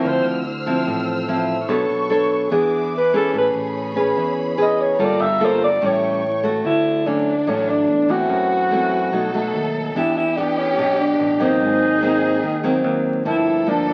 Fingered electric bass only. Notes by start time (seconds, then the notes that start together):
0.04 D2
0.24 D2
0.86 A1
1.68 B1
1.89 B1
2.51 E2
3.33 A1
3.54 A1
4.17 E2
4.99 G1
5.20 G1
5.81 A1
6.65 D2
7.47 A1
7.88 E2
8.29 F#2
9.12 B1
9.54 D#2
9.95 E2
10.78 B1
11.19 A1
11.61 G#1
12.43 D#2
12.84 D#2
13.25 G1